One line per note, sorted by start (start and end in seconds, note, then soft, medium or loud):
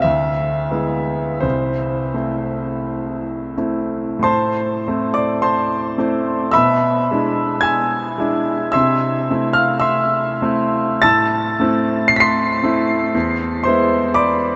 0.02 0.69 D2 medium
0.02 1.42 E5 medium
0.71 1.39 G#3 soft
0.71 1.39 B3 soft
0.71 1.40 E4 soft
1.40 2.13 C2 medium
1.40 3.57 C5 medium
2.14 3.54 A3 soft
2.14 3.54 C4 soft
2.14 3.55 E4 soft
3.58 4.23 A3 soft
3.58 4.23 C4 soft
3.58 4.23 E4 soft
4.19 4.83 A2 medium
4.19 5.16 C6 medium
4.24 5.13 C5 medium
4.24 5.13 A5 medium
4.88 5.97 A3 soft
4.88 5.97 C4 soft
4.88 5.97 E4 soft
5.14 5.43 D5 medium
5.14 5.45 D6 medium
5.42 6.50 C5 medium
5.42 6.50 A5 medium
5.42 6.53 C6 medium
5.98 6.50 A3 soft
5.98 6.50 C4 soft
5.98 6.51 E4 medium
6.52 7.08 B2 medium
6.52 7.59 E5 medium
6.52 7.59 B5 medium
6.52 7.61 E6 loud
7.11 8.16 G#3 soft
7.11 8.17 D4 soft
7.11 8.17 E4 medium
7.61 8.71 G#5 medium
7.61 8.70 E6 medium
7.61 8.74 G#6 medium
8.18 8.71 G#3 medium
8.18 8.72 D4 soft
8.18 8.72 E4 medium
8.72 9.29 C3 medium
8.72 9.52 E5 medium
8.72 9.52 C6 medium
8.72 9.55 E6 medium
9.30 10.40 A3 soft
9.30 10.39 C4 soft
9.30 10.40 E4 medium
9.53 9.81 F5 medium
9.53 9.83 F6 medium
9.80 10.98 E5 medium
9.80 10.98 C6 medium
9.80 11.01 E6 medium
10.42 10.99 A3 medium
10.42 10.99 C4 soft
10.42 11.00 E4 medium
11.02 11.57 A2 medium
11.02 12.06 A5 medium
11.02 12.06 E6 medium
11.02 12.10 A6 loud
11.60 12.60 A3 medium
11.60 12.61 C4 medium
11.60 12.61 E4 medium
12.08 12.16 C7 loud
12.16 12.23 B6 medium
12.16 13.13 C7 loud
12.22 13.10 C6 medium
12.63 13.11 A3 medium
12.63 13.12 C4 medium
12.63 13.12 E4 medium
13.14 13.64 E2 medium
13.63 14.56 G#3 soft
13.63 14.56 E4 medium
13.63 14.13 C5 medium
13.63 14.16 C6 medium
13.68 14.56 B3 medium
14.14 14.56 D5 medium
14.14 14.56 B5 medium
14.14 14.56 D6 medium